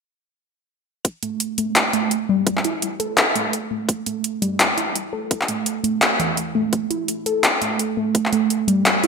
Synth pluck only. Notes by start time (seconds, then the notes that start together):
1.23 A3
1.58 A3
1.93 A3
2.29 G3
2.65 E4
3.00 A4
3.35 A3
3.71 A3
4.07 A3
4.42 G3
4.77 E4
5.13 A4
5.49 A3
5.84 A3
6.19 E3
6.55 A3
6.90 E4
7.26 A4
7.62 A3
7.97 A3
8.33 A3
8.68 G3
9.04 E4